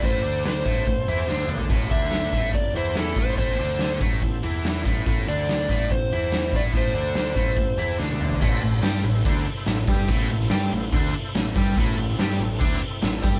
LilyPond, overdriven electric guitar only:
\new Staff \with { instrumentName = "Overdriven electric guitar" } { \clef bass \time 4/4 \key a \minor \tempo 4 = 143 <a, a>8 <d d'>4 <a, a>8 a,8 <e e'>8 <d d'>4 | <a, a>8 <d d'>4 <a, a>8 a,8 <e e'>4 <a, a>8 | <a, a>8 <d d'>4 <a, a>8 a,8 <e e'>4 <a, a>8 | <a, a>8 <d d'>4 <a, a>8 a,8 <e e'>4 <a, a>8 |
<a, a>8 <d d'>4 <a, a>8 a,8 <e e'>8 <d d'>4 | <a, a>8 a,8 <g g'>8 a,8 <d d'>8 r8 a,8 <g g'>8 | <a, a>8 a,8 <g g'>8 a,8 <d d'>8 r8 a,8 <g g'>8 | <a, a>8 a,8 <g g'>8 a,8 <d d'>8 r8 a,8 <g g'>8 | }